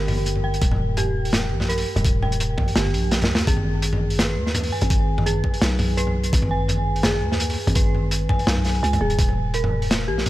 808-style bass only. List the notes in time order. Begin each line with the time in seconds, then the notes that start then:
Already playing: G1
0.62 D#1
1.51 A#1
1.96 D#1
2.76 G1
2.93 A#1
3.29 D#2
3.47 G#1
4.37 D#2
4.82 G#1
5.62 B1
6.33 G#1
7.22 D#2
7.67 G#1
8.47 B1
8.83 C#2
9.01 D#1
9.19 D#1
10.08 A#1